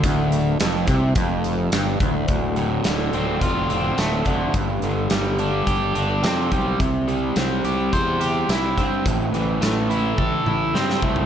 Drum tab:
HH |x-x-x-x-x-x-x-x-|x-x-x-x-x-x-x-x-|x-x-x-x-x-x-x-x-|x-x-x-x-x-x-x-x-|
TB |----x-------x---|----x-------x---|----x-------x---|----x-------x---|
SD |----o-------o---|----o-------o---|----o-------o---|----o-------o---|
T1 |----------------|----------------|----------------|----------------|
T2 |----------------|----------------|----------------|----------------|
FT |----------------|----------------|----------------|----------------|
BD |o-----o-o-----o-|o-------o-----o-|o-------o-----o-|o-------o-----o-|

HH |x-x-x-x---------|
TB |----x-----------|
SD |----o-------oo--|
T1 |--------o-------|
T2 |----------o-----|
FT |---------------o|
BD |o-------o-----o-|